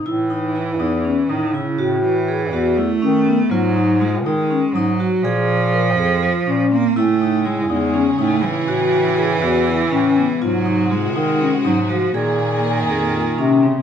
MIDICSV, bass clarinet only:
0, 0, Header, 1, 2, 480
1, 0, Start_track
1, 0, Tempo, 493827
1, 53, Time_signature, 7, 3, 24, 8
1, 13434, End_track
2, 0, Start_track
2, 0, Title_t, "Bass clarinet"
2, 0, Program_c, 0, 71
2, 55, Note_on_c, 0, 45, 93
2, 768, Note_on_c, 0, 40, 93
2, 783, Note_off_c, 0, 45, 0
2, 1159, Note_off_c, 0, 40, 0
2, 1251, Note_on_c, 0, 45, 83
2, 1641, Note_off_c, 0, 45, 0
2, 1731, Note_on_c, 0, 45, 96
2, 2452, Note_on_c, 0, 40, 101
2, 2466, Note_off_c, 0, 45, 0
2, 2840, Note_off_c, 0, 40, 0
2, 2927, Note_on_c, 0, 51, 92
2, 3317, Note_off_c, 0, 51, 0
2, 3408, Note_on_c, 0, 44, 100
2, 4131, Note_on_c, 0, 51, 98
2, 4146, Note_off_c, 0, 44, 0
2, 4519, Note_off_c, 0, 51, 0
2, 4609, Note_on_c, 0, 44, 87
2, 4997, Note_off_c, 0, 44, 0
2, 5084, Note_on_c, 0, 46, 100
2, 5803, Note_on_c, 0, 41, 100
2, 5818, Note_off_c, 0, 46, 0
2, 6160, Note_off_c, 0, 41, 0
2, 6277, Note_on_c, 0, 46, 82
2, 6670, Note_off_c, 0, 46, 0
2, 6761, Note_on_c, 0, 45, 93
2, 7475, Note_on_c, 0, 40, 106
2, 7490, Note_off_c, 0, 45, 0
2, 7868, Note_off_c, 0, 40, 0
2, 7955, Note_on_c, 0, 45, 88
2, 8348, Note_off_c, 0, 45, 0
2, 8437, Note_on_c, 0, 45, 92
2, 9155, Note_on_c, 0, 40, 107
2, 9169, Note_off_c, 0, 45, 0
2, 9548, Note_off_c, 0, 40, 0
2, 9642, Note_on_c, 0, 45, 94
2, 10033, Note_off_c, 0, 45, 0
2, 10127, Note_on_c, 0, 44, 96
2, 10839, Note_on_c, 0, 51, 100
2, 10854, Note_off_c, 0, 44, 0
2, 11232, Note_off_c, 0, 51, 0
2, 11326, Note_on_c, 0, 44, 93
2, 11717, Note_off_c, 0, 44, 0
2, 11802, Note_on_c, 0, 46, 90
2, 12518, Note_on_c, 0, 41, 91
2, 12532, Note_off_c, 0, 46, 0
2, 12913, Note_off_c, 0, 41, 0
2, 13012, Note_on_c, 0, 48, 94
2, 13402, Note_off_c, 0, 48, 0
2, 13434, End_track
0, 0, End_of_file